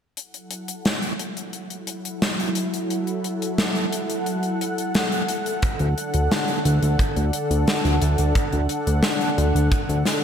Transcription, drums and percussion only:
0.17 closed hi-hat medium
0.34 closed hi-hat soft
0.51 closed hi-hat medium
0.68 closed hi-hat medium
0.85 snare loud
0.85 closed hi-hat medium
1.02 closed hi-hat soft
1.19 closed hi-hat medium
1.37 closed hi-hat medium
1.53 closed hi-hat medium
1.70 closed hi-hat soft
1.87 closed hi-hat medium
2.05 closed hi-hat medium
2.22 snare loud
2.22 closed hi-hat medium
2.40 closed hi-hat soft
2.55 closed hi-hat loud
2.74 closed hi-hat medium
2.90 closed hi-hat medium
3.07 closed hi-hat soft
3.24 closed hi-hat medium
3.42 closed hi-hat medium
3.58 snare loud
3.58 closed hi-hat medium
3.76 closed hi-hat soft
3.92 closed hi-hat loud
4.10 closed hi-hat medium
4.26 closed hi-hat medium
4.43 closed hi-hat soft
4.61 closed hi-hat loud
4.78 closed hi-hat medium
4.95 snare loud
4.95 closed hi-hat medium
5.12 closed hi-hat soft
5.29 closed hi-hat loud
5.46 closed hi-hat medium
5.62 kick loud
5.62 closed hi-hat medium
5.79 closed hi-hat soft
5.98 closed hi-hat medium
6.14 closed hi-hat medium
6.31 snare loud
6.31 closed hi-hat medium
6.48 closed hi-hat soft
6.65 closed hi-hat loud
6.83 closed hi-hat medium
6.99 kick loud
6.99 closed hi-hat medium
7.17 closed hi-hat soft
7.33 closed hi-hat loud
7.51 closed hi-hat medium
7.67 snare loud
7.67 closed hi-hat medium
7.85 closed hi-hat soft
8.02 closed hi-hat medium
8.18 closed hi-hat medium
8.35 kick loud
8.35 closed hi-hat medium
8.53 closed hi-hat soft
8.69 closed hi-hat loud
8.87 closed hi-hat medium
9.03 snare loud
9.03 closed hi-hat medium
9.21 closed hi-hat soft
9.38 closed hi-hat loud
9.56 closed hi-hat medium
9.72 kick loud
9.72 closed hi-hat medium
9.89 closed hi-hat soft
10.05 snare medium
10.05 closed hi-hat medium

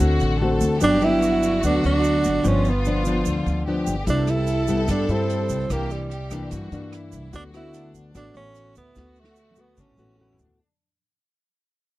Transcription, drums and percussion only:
0.20 shaker soft
0.61 shaker medium
0.81 shaker medium
1.01 shaker soft
1.22 shaker soft
1.43 shaker medium
1.63 shaker medium
1.84 shaker soft
2.04 shaker medium
2.24 shaker medium
2.44 shaker medium
2.65 shaker soft
2.85 shaker soft
3.05 shaker medium
3.25 shaker medium
3.47 shaker soft
3.87 shaker medium
4.07 kick medium
4.07 closed hi-hat soft
4.07 shaker medium
4.27 cross-stick medium
4.27 closed hi-hat soft
4.27 shaker soft
4.47 closed hi-hat soft
4.47 shaker medium
4.67 kick soft
4.67 closed hi-hat soft
4.67 shaker medium
4.88 kick medium
4.88 cross-stick medium
4.88 closed hi-hat soft
4.88 shaker medium
5.09 closed hi-hat soft
5.09 shaker soft
5.30 closed hi-hat soft
5.49 kick soft
5.49 closed hi-hat soft
5.49 shaker medium
5.70 kick medium
5.70 cross-stick medium
5.70 closed hi-hat soft
5.70 shaker medium
5.90 closed hi-hat soft
5.90 shaker soft
6.11 closed hi-hat soft
6.31 kick soft
6.31 cross-stick medium
6.31 closed hi-hat soft
6.31 shaker medium
6.51 kick medium
6.51 closed hi-hat soft
6.51 shaker medium
6.72 closed hi-hat soft
6.72 shaker soft
6.93 cross-stick medium
6.93 closed hi-hat soft
7.12 kick soft
7.12 closed hi-hat soft
7.12 shaker medium
7.33 kick medium
7.33 closed hi-hat soft
7.33 shaker medium
7.54 cross-stick medium
7.54 closed hi-hat soft
7.54 shaker soft
7.74 closed hi-hat soft
7.74 shaker medium
7.95 kick soft
7.95 closed hi-hat soft
7.95 shaker medium
8.15 kick medium
8.15 cross-stick medium
8.15 closed hi-hat soft
8.15 shaker medium
8.35 closed hi-hat soft
8.35 shaker soft
8.55 closed hi-hat soft
8.55 shaker medium
8.75 kick soft
8.75 closed hi-hat soft
8.75 shaker medium
8.95 kick medium
8.95 snare soft
8.95 shaker medium
9.16 shaker soft
9.24 snare soft
9.36 shaker medium
9.51 high tom medium
9.56 shaker medium
9.77 kick medium
9.77 mid tom medium
9.77 shaker medium
9.91 mid tom soft
9.98 shaker soft
10.05 mid tom medium
10.18 floor tom medium
10.32 floor tom medium
10.39 shaker medium
10.46 floor tom medium

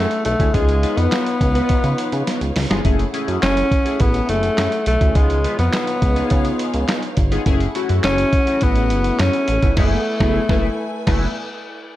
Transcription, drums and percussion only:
0.11 closed hi-hat soft
0.25 closed hi-hat medium
0.40 kick medium
0.40 closed hi-hat medium
0.54 kick loud
0.54 closed hi-hat medium
0.69 closed hi-hat soft
0.83 closed hi-hat medium
0.98 closed hi-hat medium
1.12 snare loud
1.12 clap loud
1.12 closed hi-hat medium
1.26 closed hi-hat medium
1.41 kick loud
1.41 closed hi-hat medium
1.55 closed hi-hat medium
1.69 kick loud
1.69 closed hi-hat medium
1.84 closed hi-hat medium
1.98 closed hi-hat medium
2.12 closed hi-hat medium
2.27 snare medium
2.27 closed hi-hat loud
2.41 closed hi-hat soft
2.56 snare loud
2.56 open hi-hat medium
2.71 snare loud
2.71 closed hi-hat medium
2.85 kick loud
2.85 closed hi-hat medium
2.99 closed hi-hat soft
3.14 closed hi-hat medium
3.28 closed hi-hat medium
3.43 snare loud
3.43 clap loud
3.43 closed hi-hat medium
3.57 closed hi-hat medium
3.71 kick loud
3.71 closed hi-hat medium
3.86 closed hi-hat medium
4.00 kick loud
4.00 closed hi-hat medium
4.14 closed hi-hat soft
4.29 closed hi-hat medium
4.43 closed hi-hat soft
4.58 snare loud
4.58 clap medium
4.58 closed hi-hat loud
4.72 closed hi-hat soft
4.86 closed hi-hat medium
5.01 kick loud
5.01 closed hi-hat medium
5.15 kick loud
5.15 closed hi-hat medium
5.30 closed hi-hat soft
5.44 closed hi-hat medium
5.59 closed hi-hat medium
5.73 snare loud
5.73 clap loud
5.73 closed hi-hat medium
5.87 closed hi-hat medium
6.02 kick loud
6.02 closed hi-hat medium
6.16 closed hi-hat medium
6.30 kick loud
6.30 closed hi-hat medium
6.45 closed hi-hat medium
6.59 closed hi-hat medium
6.74 closed hi-hat medium
6.88 snare loud
6.88 clap loud
6.88 closed hi-hat loud
7.03 closed hi-hat soft
7.17 kick loud
7.17 closed hi-hat medium
7.32 closed hi-hat medium
7.46 kick loud
7.46 closed hi-hat medium
7.60 closed hi-hat soft
7.75 closed hi-hat medium
7.89 closed hi-hat medium
8.04 snare loud
8.04 clap loud
8.04 closed hi-hat medium
8.18 closed hi-hat medium
8.33 kick loud
8.33 closed hi-hat medium
8.47 closed hi-hat medium
8.61 kick loud
8.61 closed hi-hat medium
8.75 closed hi-hat soft
8.90 closed hi-hat medium
9.04 closed hi-hat medium
9.19 snare loud
9.19 clap medium
9.19 closed hi-hat loud
9.33 closed hi-hat soft
9.48 closed hi-hat medium
9.62 kick loud
9.62 closed hi-hat medium
9.77 kick loud
9.77 snare loud
9.77 crash medium
10.20 kick loud
10.20 snare loud
10.49 kick loud
10.49 snare loud
11.07 kick loud
11.07 snare loud
11.07 crash medium

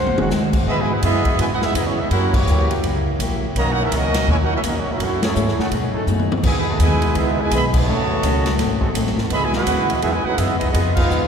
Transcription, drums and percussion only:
0.07 high tom medium
0.18 high tom loud
0.30 snare medium
0.30 hi-hat pedal medium
0.53 kick medium
0.53 crash medium
0.67 kick soft
1.03 kick soft
1.03 hi-hat pedal medium
1.03 ride medium
1.25 kick medium
1.25 ride medium
1.39 kick soft
1.39 ride medium
1.62 snare medium
1.75 kick soft
1.75 hi-hat pedal medium
1.75 ride medium
2.11 kick soft
2.11 ride medium
2.34 kick medium
2.34 crash medium
2.47 hi-hat pedal medium
2.71 ride medium
2.83 kick soft
2.83 ride medium
3.20 kick soft
3.20 hi-hat pedal medium
3.20 ride medium
3.56 kick soft
3.56 ride medium
3.92 kick soft
3.92 hi-hat pedal medium
3.92 ride medium
4.14 snare medium
4.14 ride medium
4.27 kick soft
4.63 kick soft
4.63 hi-hat pedal medium
4.63 ride medium
5.00 kick soft
5.00 ride medium
5.22 snare medium
5.22 ride medium
5.36 hi-hat pedal medium
5.48 snare soft
5.60 snare medium
5.71 kick soft
5.71 ride medium
6.07 hi-hat pedal medium
6.07 high tom medium
6.20 high tom medium
6.32 high tom loud
6.43 kick medium
6.43 crash loud
6.79 kick soft
6.79 hi-hat pedal medium
6.79 ride medium
7.02 ride medium
7.15 kick soft
7.15 ride medium
7.51 kick soft
7.51 hi-hat pedal medium
7.51 ride medium
7.74 kick loud
7.74 crash loud
8.23 kick soft
8.23 hi-hat pedal medium
8.23 ride medium
8.46 snare medium
8.46 ride medium
8.59 kick soft
8.59 snare soft
8.59 ride medium
8.81 kick medium
8.95 kick soft
8.95 hi-hat pedal medium
8.95 ride medium
9.07 snare soft
9.18 snare medium
9.30 kick soft
9.30 ride medium
9.53 snare medium
9.66 kick soft
9.66 hi-hat pedal medium
9.66 ride medium
9.90 ride medium
10.02 kick soft
10.02 ride medium
10.38 kick soft
10.38 hi-hat pedal medium
10.38 ride medium
10.61 ride medium
10.74 kick soft
10.74 ride medium
10.97 kick medium
10.97 crash medium
11.11 hi-hat pedal medium

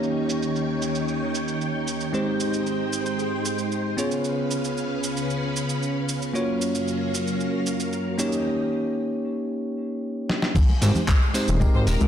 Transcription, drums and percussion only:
0.03 shaker soft
0.29 shaker medium
0.42 shaker soft
0.56 shaker soft
0.82 shaker medium
0.95 shaker soft
1.08 shaker soft
1.35 shaker medium
1.48 shaker soft
1.61 shaker soft
1.87 shaker medium
2.01 shaker soft
2.14 shaker soft
2.40 shaker medium
2.53 shaker soft
2.66 shaker soft
2.93 shaker medium
3.06 shaker soft
3.19 shaker soft
3.45 shaker medium
3.58 shaker soft
3.72 shaker soft
3.98 shaker medium
4.11 shaker soft
4.24 shaker soft
4.51 shaker medium
4.64 shaker soft
4.77 shaker soft
5.03 shaker medium
5.17 shaker soft
5.30 shaker soft
5.56 shaker medium
5.69 shaker soft
5.83 shaker soft
6.09 shaker medium
6.22 shaker soft
6.35 shaker soft
6.61 shaker medium
6.75 shaker soft
6.88 shaker soft
7.14 shaker medium
7.27 shaker soft
7.40 shaker soft
7.66 shaker medium
7.80 shaker soft
7.93 shaker soft
8.19 shaker medium
8.32 shaker soft
10.29 snare medium
10.42 snare medium
10.55 kick loud
10.55 crash loud
10.55 tambourine medium
10.55 low conga medium
10.55 shaker soft
10.68 tambourine soft
10.68 muted conga medium
10.82 open hi-hat loud
10.82 tambourine loud
10.82 high conga medium
10.82 shaker medium
10.95 tambourine soft
10.95 low conga medium
10.95 shaker soft
11.08 kick loud
11.08 clap loud
11.08 tambourine soft
11.08 muted conga medium
11.08 shaker soft
11.22 tambourine soft
11.34 open hi-hat medium
11.34 tambourine medium
11.34 shaker medium
11.48 tambourine soft
11.48 shaker soft
11.61 kick loud
11.61 tambourine soft
11.61 muted conga medium
11.61 shaker soft
11.74 tambourine soft
11.87 open hi-hat loud
11.87 tambourine loud
11.87 shaker medium
12.00 tambourine soft
12.00 muted conga medium
12.00 high conga medium
12.00 shaker soft

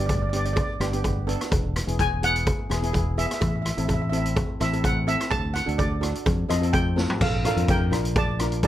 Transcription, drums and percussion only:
0.09 kick medium
0.09 closed hi-hat medium
0.09 cowbell medium
0.33 closed hi-hat medium
0.45 closed hi-hat medium
0.56 kick loud
0.56 closed hi-hat medium
0.56 cowbell medium
0.81 cross-stick medium
0.81 closed hi-hat medium
0.93 closed hi-hat medium
1.04 kick medium
1.04 closed hi-hat medium
1.04 cowbell medium
1.29 closed hi-hat medium
1.41 cross-stick medium
1.41 closed hi-hat medium
1.51 kick loud
1.51 closed hi-hat medium
1.51 cowbell medium
1.76 cross-stick medium
1.76 closed hi-hat medium
1.88 closed hi-hat medium
1.99 kick medium
1.99 closed hi-hat medium
1.99 cowbell medium
2.23 closed hi-hat medium
2.36 closed hi-hat medium
2.47 kick loud
2.47 closed hi-hat medium
2.47 cowbell medium
2.71 cross-stick medium
2.71 closed hi-hat medium
2.83 closed hi-hat medium
2.93 kick medium
2.93 closed hi-hat medium
2.93 cowbell medium
3.19 closed hi-hat medium
3.31 cross-stick medium
3.31 closed hi-hat medium
3.41 kick loud
3.41 closed hi-hat medium
3.41 cowbell medium
3.65 cross-stick medium
3.65 closed hi-hat medium
3.78 closed hi-hat medium
3.88 kick medium
3.88 closed hi-hat medium
3.88 cowbell medium
4.13 closed hi-hat medium
4.25 closed hi-hat medium
4.36 kick loud
4.36 closed hi-hat medium
4.36 cowbell medium
4.61 cross-stick medium
4.61 closed hi-hat medium
4.73 closed hi-hat medium
4.84 kick medium
4.84 closed hi-hat medium
4.84 cowbell medium
5.08 closed hi-hat medium
5.20 cross-stick medium
5.20 closed hi-hat medium
5.31 kick loud
5.31 closed hi-hat medium
5.31 cowbell medium
5.55 cross-stick medium
5.55 closed hi-hat medium
5.68 closed hi-hat medium
5.79 kick loud
5.79 closed hi-hat medium
5.79 cowbell medium
6.03 cross-stick medium
6.03 closed hi-hat medium
6.15 closed hi-hat medium
6.26 kick loud
6.26 closed hi-hat medium
6.26 cowbell loud
6.50 cross-stick medium
6.50 closed hi-hat loud
6.63 closed hi-hat medium
6.73 kick medium
6.73 closed hi-hat medium
6.73 cowbell medium
6.97 snare medium
7.10 floor tom medium
7.21 kick loud
7.21 crash loud
7.21 cowbell medium
7.45 cross-stick medium
7.45 closed hi-hat medium
7.57 closed hi-hat medium
7.68 kick loud
7.68 closed hi-hat medium
7.68 cowbell medium
7.93 cross-stick medium
7.93 closed hi-hat medium
8.05 closed hi-hat medium
8.15 kick loud
8.15 closed hi-hat medium
8.15 cowbell loud
8.39 cross-stick medium
8.39 closed hi-hat medium
8.52 closed hi-hat medium
8.63 kick medium
8.63 closed hi-hat medium
8.63 cowbell medium

